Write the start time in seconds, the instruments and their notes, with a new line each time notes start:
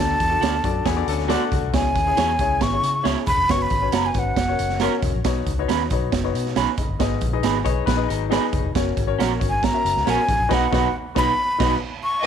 Already playing: grand piano D4 F#4 A4 D5
0.00 fingered electric bass D2, grand piano D3, flute A5
0.20 fingered electric bass E2, kick, closed hi-hat
0.30 grand piano D4 F#4 A4 D5
0.41 fingered electric bass D2, clean electric guitar F#4 A4 D5, snare, closed hi-hat
0.64 fingered electric bass F#2, grand piano D4 F#4 A4 D5, kick, closed hi-hat
0.85 fingered electric bass E2, clean electric guitar B3 G#4, kick, snare, closed hi-hat
0.96 grand piano D4 F#4 A4 D5
1.08 fingered electric bass D2, clean electric guitar C#4 A4, closed hi-hat
1.19 snare
1.28 clean electric guitar A3 F#4 A4 D5, grand piano D4 F#4 A4 D5, snare, closed hi-hat
1.52 fingered electric bass C#2, kick, closed hi-hat
1.63 fingered electric bass C2
1.73 fingered electric bass C#2, grand piano C#3 C#4 E4 G#4 C#5, flute G#5, kick, snare, closed hi-hat
1.95 fingered electric bass D#2, kick, closed hi-hat
2.07 grand piano C#4 E4 G#4 C#5
2.17 fingered electric bass E2, clean electric guitar E4 G#4 C#5, snare, closed hi-hat
2.39 fingered electric bass C#2, grand piano C#4 E4 G#4 C#5, kick, closed hi-hat
2.61 fingered electric bass G#1, flute C#6, kick, snare, closed hi-hat
2.73 grand piano C#4 E4 G#4 C#5
2.83 fingered electric bass C#3, closed hi-hat
3.03 fingered electric bass C#2, grand piano C#4 E4 G#4 C#5, clean electric guitar E4 G#4 C#5, snare, closed hi-hat
3.27 fingered electric bass E1, flute B5, kick, closed hi-hat
3.38 fingered electric bass F1
3.49 fingered electric bass F#1, grand piano C#4 F#4 B4 C#5, flute C#6, kick, snare, closed hi-hat
3.62 flute B5
3.70 fingered electric bass G#1, kick, closed hi-hat
3.81 grand piano C#4 F#4 B4 C#5
3.92 fingered electric bass F#1, clean electric guitar C#4 F#4 B4, flute A#5, snare, closed hi-hat
4.06 flute G#5
4.14 fingered electric bass G#1, grand piano C#4 F#4 B4 C#5, kick, closed hi-hat
4.19 flute F#5
4.36 fingered electric bass F#1, kick, snare, closed hi-hat
4.48 grand piano C#4 F#4 A#4 C#5
4.59 fingered electric bass F#1, closed hi-hat
4.70 snare
4.80 clean electric guitar C#4 F#4 A#4, grand piano C#4 F#4 A#4 C#5, snare, closed hi-hat
5.02 fingered electric bass E1, kick, closed hi-hat
5.14 fingered electric bass A#1
5.24 fingered electric bass B1, grand piano B2 D#4 F#4 B4 C#5, kick, snare, closed hi-hat
5.46 fingered electric bass C#2, kick, closed hi-hat
5.59 grand piano D#4 F#4 B4 C#5
5.68 fingered electric bass D#2, clean electric guitar C#4 D#4 B4, snare, closed hi-hat
5.90 fingered electric bass B1, grand piano D#4 F#4 B4 C#5, kick, closed hi-hat
6.12 fingered electric bass F#1, kick, snare, closed hi-hat
6.24 grand piano D#4 F#4 B4 C#5
6.34 fingered electric bass B2, closed hi-hat
6.46 snare
6.56 fingered electric bass B1, clean electric guitar C#4 D#4 B4, grand piano G#5, snare, closed hi-hat
6.77 fingered electric bass F#1, grand piano D#5, kick, closed hi-hat
6.89 fingered electric bass G1
6.99 fingered electric bass G#1, grand piano G#2 D#4 G#4 B4 D#5, kick, snare, closed hi-hat
7.21 fingered electric bass A#1, kick, closed hi-hat
7.33 grand piano D#4 G#4 B4 D#5
7.43 fingered electric bass G#1, clean electric guitar D#4 G#4 B4, snare, closed hi-hat
7.64 fingered electric bass B1, grand piano D#4 G#4 B4 D#5, clean electric guitar C#5, kick, closed hi-hat
7.86 fingered electric bass A#1, clean electric guitar D#4 B4, kick, snare, closed hi-hat
7.96 grand piano D#4 G#4 B4 D#5
8.09 fingered electric bass G#1, clean electric guitar F#3 D#4, closed hi-hat
8.30 grand piano D#4 G#4 B4 D5, clean electric guitar D#4 G#4 B4, snare, closed hi-hat
8.36 grand piano D#5
8.53 fingered electric bass F#1, kick, closed hi-hat
8.64 fingered electric bass F1
8.75 fingered electric bass F#1, grand piano C#4 F#4 A#4 C#5, kick, snare, closed hi-hat
8.97 fingered electric bass G#1, kick, closed hi-hat
9.07 grand piano C#4 F#4 A#4 C#5
9.19 fingered electric bass A#1, clean electric guitar C#4 F#4 A#4, snare, closed hi-hat
9.39 fingered electric bass G#1, grand piano C#4 F#4 A#4 C#5, kick, closed hi-hat
9.49 flute G#5
9.63 flute A#5, kick, snare, closed hi-hat
9.73 grand piano C#4 F#4 A#4 E5
9.85 fingered electric bass F#1, closed hi-hat
9.96 fingered electric bass C#2, snare
10.05 fingered electric bass A#1, grand piano C#4 F#4 A#4 C#5, clean electric guitar C#4 F#4 A#4, snare, closed hi-hat
10.10 flute G#5
10.28 fingered electric bass A1, kick, closed hi-hat
10.40 fingered electric bass A#1
10.49 fingered electric bass B1, grand piano B2 D#4 F#4 B4 D#5, clean electric guitar D#4 F#4 B4, kick, snare, crash
10.53 flute F#5
10.71 fingered electric bass B1, grand piano D#4 F#4 B4 D#5, clean electric guitar D#4 F#4 B4, kick, snare
11.15 fingered electric bass B1, grand piano D#4 F#4 B4 D#5, clean electric guitar D#4 F#4 B4, flute B5, kick, snare
11.58 fingered electric bass B1, grand piano D#4 F#4 B4 D#5, clean electric guitar D#4 F#4 B4, kick, snare, crash
12.03 flute C#6